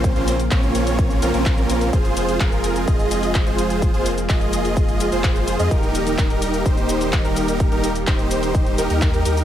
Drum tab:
HH |xxoxxxooxxoxxxox|xxoxxxoxxxooxxox|xxoxxxooxxoxxxox|xxoxxxoxxxooxxox|
SH |xxxxxxxxxxxxxxxx|xxxxxxxxxxxxxxxx|xxxxxxxxxxxxxxxx|xxxxxxxxxxxxxxxx|
CP |----x-------x---|----x-------x---|----x-------x---|----x-------x---|
BD |o---o---o---o---|o---o---o---o---|o---o---o---o---|o---o---o---o---|

HH |xxoxxxooxxoxxxox|
SH |xxxxxxxxxxxxxxxx|
CP |----x-------x---|
BD |o---o---o---o---|